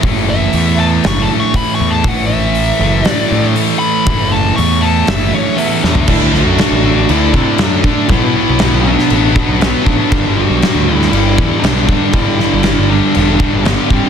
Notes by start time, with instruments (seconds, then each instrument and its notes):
0.03 picked electric bass F#1, distorted electric guitar A2 E3 A3, kick, open hi-hat
0.30 lead electric guitar E5
0.53 picked electric bass E2, open hi-hat
0.78 distorted electric guitar A2 E3 A3, lead electric guitar A5
1.04 picked electric bass F#1, lead electric guitar C#6, snare, open hi-hat
1.22 lead electric guitar A5
1.40 lead electric guitar C#6
1.54 lead electric guitar B5, kick, open hi-hat
1.75 lead electric guitar C#6
1.80 picked electric bass E2
1.91 lead electric guitar A5
2.04 picked electric bass A1, distorted electric guitar A2 E3, kick, open hi-hat
2.08 distorted electric guitar A3, lead electric guitar F#5
2.26 lead electric guitar E5
2.55 open hi-hat
2.80 picked electric bass F#1, distorted electric guitar E3 A3
2.84 distorted electric guitar A2
3.05 lead electric guitar D5, snare, open hi-hat
3.32 picked electric bass A2
3.56 open hi-hat
3.79 lead electric guitar B5
4.06 picked electric bass F#1, distorted electric guitar A2 E3, kick, open hi-hat
4.10 distorted electric guitar A3
4.31 lead electric guitar A5
4.56 picked electric bass E2, lead electric guitar C#6, open hi-hat
4.81 distorted electric guitar E3 A3, lead electric guitar A5
4.85 distorted electric guitar A2
5.07 picked electric bass F#1, lead electric guitar E5, snare, open hi-hat
5.35 lead electric guitar C#5
5.57 lead electric guitar B3 E5, open hi-hat
5.84 picked electric bass E2, lead electric guitar D4, snare
5.95 floor tom
6.08 picked electric bass D2, distorted electric guitar D3 A3 D4, lead electric guitar E4, kick, crash
6.22 picked electric bass D2
6.34 distorted electric guitar D3 A3 D4, lead electric guitar F#4, snare
6.46 picked electric bass F#2
6.58 distorted electric guitar D3 A3 D4, snare, crash
6.71 picked electric bass A1
6.85 distorted electric guitar D3 A3 D4
7.09 picked electric bass D2, distorted electric guitar D3 A3 D4, lead electric guitar E4, crash
7.32 picked electric bass C3, distorted electric guitar D4, kick
7.36 distorted electric guitar D3 A3 D4
7.58 picked electric bass F#2, distorted electric guitar D3 A3, lead electric guitar D4, snare, crash
7.63 distorted electric guitar D4
7.84 distorted electric guitar D3 A3 D4, lead electric guitar D4, kick
8.08 picked electric bass B1, distorted electric guitar B2, lead electric guitar E4, kick, crash
8.12 distorted electric guitar F#3 B3
8.23 picked electric bass B2
8.36 distorted electric guitar B2 F#3 B3
8.49 picked electric bass B1
8.59 distorted electric guitar B2 F#3, snare, crash
8.63 distorted electric guitar B3
8.73 picked electric bass B1
8.84 distorted electric guitar B2 F#3 B3, lead electric guitar D4
8.99 snare
9.10 picked electric bass A1, distorted electric guitar B2 F#3 B3, crash
9.35 distorted electric guitar B2 F#3 B3, kick
9.39 distorted electric guitar B3
9.48 picked electric bass B1
9.60 picked electric bass B1, distorted electric guitar B2 F#3 B3, lead electric guitar B3, snare, crash
9.84 picked electric bass A1, distorted electric guitar B2 F#3, lead electric guitar D4, kick
9.89 distorted electric guitar B3
10.12 picked electric bass G1, distorted electric guitar G2 D3 G3, kick, crash
10.26 picked electric bass G1
10.35 distorted electric guitar G2, lead electric guitar F#4
10.39 distorted electric guitar D3 G3
10.50 picked electric bass B1
10.62 distorted electric guitar G2 D3 G3, snare, crash
10.75 picked electric bass D2
10.88 distorted electric guitar G2 D3 G3
10.93 lead electric guitar E4
11.02 snare
11.10 picked electric bass G1, distorted electric guitar G2, lead electric guitar E4, crash
11.14 distorted electric guitar D3 G3
11.36 picked electric bass E2, distorted electric guitar G2 G3, kick
11.40 distorted electric guitar D3 G3
11.60 picked electric bass B1, lead electric guitar D4, crash
11.65 distorted electric guitar G2 D3 G3, snare
11.86 lead electric guitar D4, kick
11.90 distorted electric guitar G2 D3 G3
12.13 picked electric bass G1, distorted electric guitar G2 D3 G3, lead electric guitar E4, kick, crash
12.27 picked electric bass G2
12.39 distorted electric guitar G2 D3 G3, snare
12.53 picked electric bass G1
12.63 distorted electric guitar G2 D3 G3, snare, crash
12.78 picked electric bass G1
12.88 distorted electric guitar G2 D3 G3, lead electric guitar D4
13.15 picked electric bass E1, distorted electric guitar G2 D3 G3, crash
13.38 distorted electric guitar G2 G3, kick
13.43 distorted electric guitar D3 G3
13.54 picked electric bass G1
13.62 distorted electric guitar G2, lead electric guitar B3, crash
13.66 picked electric bass G1, distorted electric guitar G2 D3 G3, snare
13.90 distorted electric guitar G2 D3 G3, picked electric bass G2, lead electric guitar C4, kick